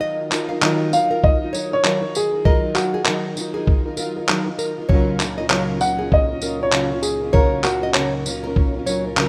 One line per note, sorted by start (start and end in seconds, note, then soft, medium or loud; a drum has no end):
0.00 0.32 D#3 medium
0.00 4.85 D#3 medium
0.00 0.31 F#3 medium
0.00 4.85 F#3 medium
0.00 0.31 D#4 medium
0.00 9.29 D#4 medium
0.00 0.32 F4 medium
0.00 0.33 A#4 medium
0.00 0.30 D#5 loud
0.31 0.50 F#3 medium
0.31 0.50 D#4 medium
0.31 0.50 F4 medium
0.31 0.48 A#4 medium
0.31 clap medium
0.31 tambourine medium
0.49 0.62 D#4 medium
0.49 0.63 F4 medium
0.49 0.62 A#4 medium
0.49 0.61 F5 medium
0.62 0.93 D#3 loud
0.62 0.91 F#3 loud
0.62 0.92 D#4 medium
0.62 0.93 F4 loud
0.62 0.94 A#4 loud
0.62 0.79 D#5 medium
0.62 clap loud
0.92 1.11 F#3 medium
0.92 1.12 D#4 medium
0.92 1.11 F4 medium
0.92 1.25 F5 loud
0.92 tambourine medium
1.10 1.43 D#4 soft
1.10 1.41 F4 medium
1.10 1.40 A#4 medium
1.24 1.74 D#5 loud
1.24 kick loud
1.41 1.53 D#4 soft
1.41 1.53 F4 medium
1.41 1.53 A#4 soft
1.53 1.72 F#3 medium
1.53 1.72 D#4 medium
1.53 1.72 F4 medium
1.53 1.70 A#4 medium
1.53 1.71 C#5 medium
1.53 tambourine medium
1.71 1.83 D#4 soft
1.71 1.84 F4 soft
1.71 1.84 A#4 medium
1.71 2.17 C#5 loud
1.84 2.02 D#3 medium
1.84 2.03 F#3 medium
1.84 2.02 D#4 medium
1.84 2.01 F4 medium
1.84 2.00 A#4 medium
1.84 clap loud
2.01 2.34 D#4 soft
2.01 2.33 F4 medium
2.01 2.31 A#4 medium
2.15 2.47 G#4 medium
2.15 tambourine medium
2.32 2.45 D#4 soft
2.32 2.45 F4 soft
2.32 2.45 A#4 soft
2.45 2.76 D#3 medium
2.45 2.74 F#3 medium
2.45 2.75 D#4 medium
2.45 2.76 F4 medium
2.45 2.74 A#4 medium
2.45 2.77 A#4 medium
2.45 2.74 D#5 loud
2.45 kick loud
2.75 2.94 F#3 medium
2.75 2.95 D#4 medium
2.75 2.94 F4 medium
2.75 3.33 F#4 medium
2.75 2.93 A#4 medium
2.75 clap medium
2.75 tambourine medium
2.94 3.07 D#4 soft
2.94 3.07 F4 soft
2.94 3.05 G#4 medium
2.94 3.07 A#4 medium
3.05 3.38 D#3 medium
3.05 3.36 F#3 medium
3.05 3.37 D#4 medium
3.05 3.23 A#4 medium
3.05 3.38 A#4 medium
3.05 clap loud
3.37 3.55 F#3 medium
3.37 3.56 D#4 medium
3.37 3.55 F4 medium
3.37 3.53 A#4 medium
3.37 tambourine medium
3.54 3.87 D#4 medium
3.54 3.86 F4 medium
3.54 3.84 G#4 medium
3.54 3.84 A#4 medium
3.67 kick loud
3.86 3.97 D#4 soft
3.86 3.98 F4 medium
3.86 3.98 A#4 medium
3.97 4.16 F#3 medium
3.97 4.16 D#4 medium
3.97 4.17 F4 medium
3.97 4.15 A#4 medium
3.97 tambourine medium
4.17 4.29 D#4 soft
4.17 4.29 F4 medium
4.17 4.29 A#4 medium
4.28 4.47 D#3 medium
4.28 4.47 F#3 medium
4.28 4.47 D#4 loud
4.28 4.46 F4 medium
4.28 4.45 A#4 medium
4.28 clap loud
4.46 4.78 D#4 soft
4.46 4.77 F4 medium
4.46 4.76 A#4 medium
4.59 4.76 A#4 medium
4.59 tambourine medium
4.78 4.91 D#4 soft
4.78 4.90 F4 soft
4.78 4.90 A#4 soft
4.89 9.29 C#2 medium
4.89 9.29 A#2 medium
4.89 5.21 C#3 medium
4.89 9.29 F#3 medium
4.89 5.20 F#3 medium
4.89 5.21 C#4 medium
4.89 5.21 F4 medium
4.89 5.22 A#4 medium
4.89 5.18 C#5 loud
4.89 kick loud
5.20 5.39 F#3 medium
5.20 5.40 C#4 medium
5.20 5.39 F4 medium
5.20 clap medium
5.20 tambourine medium
5.24 5.38 A#4 medium
5.38 5.50 C#4 medium
5.38 5.50 F4 medium
5.38 5.50 A#4 medium
5.38 5.49 D#5 medium
5.50 5.81 C#3 medium
5.50 5.79 F#3 medium
5.50 5.80 C#4 medium
5.50 5.81 F4 medium
5.50 5.82 A#4 loud
5.50 5.68 C#5 medium
5.50 clap loud
5.80 5.99 F#3 medium
5.80 5.99 C#4 medium
5.80 5.99 F4 medium
5.80 5.98 A#4 medium
5.80 6.13 F#5 loud
5.80 tambourine medium
5.99 6.31 C#4 soft
5.99 6.30 F4 medium
5.99 6.28 G#4 medium
5.99 6.28 A#4 medium
6.12 6.58 D#5 loud
6.12 kick loud
6.29 6.41 C#4 soft
6.29 6.42 F4 medium
6.29 6.42 A#4 medium
6.41 6.60 F#3 medium
6.41 6.61 C#4 medium
6.41 6.60 F4 medium
6.41 6.60 A#4 medium
6.41 6.58 A#4 medium
6.41 tambourine medium
6.60 6.72 C#4 soft
6.60 6.72 F4 medium
6.60 6.72 A#4 medium
6.60 7.02 C#5 medium
6.72 6.91 C#3 medium
6.72 6.91 F#3 medium
6.72 6.91 C#4 medium
6.72 6.91 F4 medium
6.72 6.90 A#4 medium
6.72 clap loud
6.91 7.23 C#4 soft
6.91 7.21 F4 medium
6.91 7.20 A#4 medium
7.02 7.34 G#4 medium
7.02 tambourine medium
7.21 7.32 C#4 soft
7.21 7.33 F4 soft
7.21 7.33 A#4 soft
7.33 7.64 C#3 medium
7.33 7.61 F#3 medium
7.33 7.63 C#4 medium
7.33 7.64 F4 medium
7.33 7.65 A#4 medium
7.33 7.64 A#4 medium
7.33 7.62 C#5 medium
7.33 kick loud
7.63 7.82 F#3 medium
7.63 7.83 C#4 medium
7.63 7.82 F4 medium
7.63 8.21 F#4 medium
7.63 7.80 A#4 medium
7.63 clap medium
7.63 tambourine medium
7.82 7.95 C#4 soft
7.82 7.95 F4 medium
7.82 7.94 A#4 medium
7.82 7.94 D#5 medium
7.94 8.25 C#3 medium
7.94 8.25 F#3 medium
7.94 8.26 C#4 medium
7.94 8.27 A#4 loud
7.94 8.12 C#5 medium
7.94 clap loud
8.26 8.44 F#3 medium
8.26 8.44 C#4 medium
8.26 8.45 F4 medium
8.26 8.44 A#4 medium
8.26 tambourine medium
8.44 8.76 C#4 medium
8.44 8.75 F4 medium
8.44 8.73 A#4 medium
8.56 kick loud
8.74 8.86 C#4 medium
8.74 8.86 F4 medium
8.74 8.86 A#4 medium
8.86 9.04 F#3 medium
8.86 9.05 C#4 medium
8.86 9.04 F4 medium
8.86 9.03 A#4 medium
8.86 9.04 C#5 medium
8.86 tambourine medium
9.04 9.16 C#4 medium
9.04 9.16 F4 medium
9.04 9.17 A#4 medium
9.16 9.29 C#3 loud
9.16 9.29 F#3 medium
9.16 9.29 C#4 medium
9.16 9.29 F4 loud
9.16 9.29 A#4 loud
9.16 clap loud